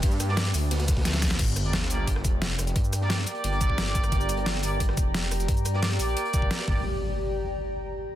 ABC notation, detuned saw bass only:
X:1
M:4/4
L:1/8
Q:1/4=176
K:Gm
V:1 name="Detuned saw bass" clef=bass
G,,3 D,,4- D,, | G,,,4- G,,, F,,,3 | G,,3 z G,,,4 | G,,,4- G,,, F,,,3 |
G,,3 B,,, z G,,, z G,,, | z8 |]